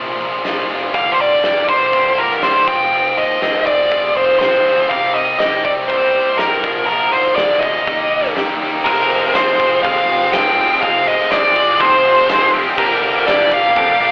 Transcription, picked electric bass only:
0, 0, Header, 1, 2, 480
1, 0, Start_track
1, 0, Tempo, 494641
1, 915, Time_signature, 4, 2, 24, 8
1, 8593, Tempo, 490196
1, 13744, End_track
2, 0, Start_track
2, 0, Title_t, "Picked electric bass"
2, 0, Program_c, 0, 34
2, 0, Note_on_c, 0, 34, 94
2, 126, Note_off_c, 0, 34, 0
2, 187, Note_on_c, 0, 34, 88
2, 363, Note_off_c, 0, 34, 0
2, 435, Note_on_c, 0, 34, 76
2, 608, Note_off_c, 0, 34, 0
2, 674, Note_on_c, 0, 29, 81
2, 847, Note_off_c, 0, 29, 0
2, 915, Note_on_c, 0, 31, 92
2, 1088, Note_off_c, 0, 31, 0
2, 1156, Note_on_c, 0, 31, 73
2, 1329, Note_off_c, 0, 31, 0
2, 1389, Note_on_c, 0, 31, 78
2, 1565, Note_off_c, 0, 31, 0
2, 1635, Note_on_c, 0, 31, 80
2, 1809, Note_off_c, 0, 31, 0
2, 1871, Note_on_c, 0, 31, 88
2, 2046, Note_off_c, 0, 31, 0
2, 2123, Note_on_c, 0, 31, 87
2, 2294, Note_off_c, 0, 31, 0
2, 2360, Note_on_c, 0, 38, 76
2, 2532, Note_off_c, 0, 38, 0
2, 2595, Note_on_c, 0, 29, 81
2, 2769, Note_off_c, 0, 29, 0
2, 2831, Note_on_c, 0, 29, 88
2, 3006, Note_off_c, 0, 29, 0
2, 3074, Note_on_c, 0, 39, 73
2, 3248, Note_off_c, 0, 39, 0
2, 3317, Note_on_c, 0, 29, 75
2, 3664, Note_off_c, 0, 29, 0
2, 3800, Note_on_c, 0, 29, 89
2, 3973, Note_off_c, 0, 29, 0
2, 4030, Note_on_c, 0, 29, 82
2, 4206, Note_off_c, 0, 29, 0
2, 4266, Note_on_c, 0, 29, 77
2, 4444, Note_off_c, 0, 29, 0
2, 4507, Note_on_c, 0, 38, 78
2, 4684, Note_off_c, 0, 38, 0
2, 4761, Note_on_c, 0, 36, 96
2, 4933, Note_off_c, 0, 36, 0
2, 4992, Note_on_c, 0, 36, 72
2, 5168, Note_off_c, 0, 36, 0
2, 5227, Note_on_c, 0, 36, 76
2, 5404, Note_off_c, 0, 36, 0
2, 5480, Note_on_c, 0, 36, 83
2, 5653, Note_off_c, 0, 36, 0
2, 5723, Note_on_c, 0, 36, 92
2, 5894, Note_off_c, 0, 36, 0
2, 5953, Note_on_c, 0, 36, 81
2, 6128, Note_off_c, 0, 36, 0
2, 6196, Note_on_c, 0, 31, 72
2, 6369, Note_off_c, 0, 31, 0
2, 6438, Note_on_c, 0, 34, 75
2, 6611, Note_off_c, 0, 34, 0
2, 6672, Note_on_c, 0, 34, 88
2, 6847, Note_off_c, 0, 34, 0
2, 6914, Note_on_c, 0, 32, 71
2, 7088, Note_off_c, 0, 32, 0
2, 7158, Note_on_c, 0, 38, 78
2, 7503, Note_off_c, 0, 38, 0
2, 7641, Note_on_c, 0, 39, 92
2, 7811, Note_off_c, 0, 39, 0
2, 7884, Note_on_c, 0, 39, 88
2, 8053, Note_off_c, 0, 39, 0
2, 8117, Note_on_c, 0, 39, 73
2, 8288, Note_off_c, 0, 39, 0
2, 8366, Note_on_c, 0, 39, 79
2, 8534, Note_off_c, 0, 39, 0
2, 8597, Note_on_c, 0, 29, 91
2, 8756, Note_off_c, 0, 29, 0
2, 8844, Note_on_c, 0, 29, 78
2, 9000, Note_off_c, 0, 29, 0
2, 9080, Note_on_c, 0, 29, 80
2, 9398, Note_off_c, 0, 29, 0
2, 9564, Note_on_c, 0, 39, 99
2, 9721, Note_off_c, 0, 39, 0
2, 9797, Note_on_c, 0, 29, 99
2, 9956, Note_off_c, 0, 29, 0
2, 10029, Note_on_c, 0, 29, 89
2, 10350, Note_off_c, 0, 29, 0
2, 10521, Note_on_c, 0, 29, 100
2, 10679, Note_off_c, 0, 29, 0
2, 10756, Note_on_c, 0, 29, 76
2, 10915, Note_off_c, 0, 29, 0
2, 10992, Note_on_c, 0, 29, 83
2, 11313, Note_off_c, 0, 29, 0
2, 11482, Note_on_c, 0, 39, 106
2, 11640, Note_off_c, 0, 39, 0
2, 11714, Note_on_c, 0, 29, 94
2, 11874, Note_off_c, 0, 29, 0
2, 11948, Note_on_c, 0, 29, 92
2, 12269, Note_off_c, 0, 29, 0
2, 12434, Note_on_c, 0, 31, 92
2, 12594, Note_off_c, 0, 31, 0
2, 12669, Note_on_c, 0, 31, 85
2, 12830, Note_off_c, 0, 31, 0
2, 12905, Note_on_c, 0, 31, 89
2, 13227, Note_off_c, 0, 31, 0
2, 13402, Note_on_c, 0, 41, 97
2, 13558, Note_off_c, 0, 41, 0
2, 13630, Note_on_c, 0, 31, 96
2, 13744, Note_off_c, 0, 31, 0
2, 13744, End_track
0, 0, End_of_file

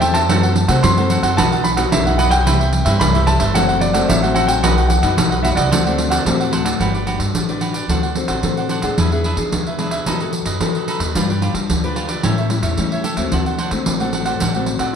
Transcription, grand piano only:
0, 0, Header, 1, 2, 480
1, 0, Start_track
1, 0, Tempo, 542495
1, 261, Time_signature, 4, 2, 24, 8
1, 13231, End_track
2, 0, Start_track
2, 0, Title_t, "Grand piano"
2, 0, Program_c, 0, 0
2, 5, Note_on_c, 0, 79, 79
2, 121, Note_on_c, 0, 81, 85
2, 124, Note_off_c, 0, 79, 0
2, 695, Note_off_c, 0, 81, 0
2, 733, Note_on_c, 0, 84, 88
2, 1214, Note_on_c, 0, 81, 92
2, 1231, Note_off_c, 0, 84, 0
2, 1450, Note_on_c, 0, 83, 77
2, 1464, Note_off_c, 0, 81, 0
2, 1505, Note_off_c, 0, 83, 0
2, 1697, Note_on_c, 0, 76, 75
2, 1922, Note_off_c, 0, 76, 0
2, 1929, Note_on_c, 0, 78, 76
2, 2039, Note_on_c, 0, 79, 97
2, 2058, Note_off_c, 0, 78, 0
2, 2650, Note_on_c, 0, 83, 90
2, 2668, Note_off_c, 0, 79, 0
2, 2878, Note_off_c, 0, 83, 0
2, 2891, Note_on_c, 0, 81, 90
2, 3136, Note_on_c, 0, 78, 81
2, 3143, Note_off_c, 0, 81, 0
2, 3368, Note_on_c, 0, 74, 76
2, 3385, Note_off_c, 0, 78, 0
2, 3613, Note_on_c, 0, 76, 71
2, 3621, Note_off_c, 0, 74, 0
2, 3845, Note_on_c, 0, 78, 72
2, 3863, Note_off_c, 0, 76, 0
2, 3955, Note_on_c, 0, 79, 80
2, 3963, Note_off_c, 0, 78, 0
2, 4322, Note_on_c, 0, 78, 76
2, 4338, Note_off_c, 0, 79, 0
2, 4801, Note_on_c, 0, 76, 71
2, 4825, Note_off_c, 0, 78, 0
2, 4845, Note_off_c, 0, 76, 0
2, 4914, Note_on_c, 0, 74, 66
2, 5611, Note_off_c, 0, 74, 0
2, 13231, End_track
0, 0, End_of_file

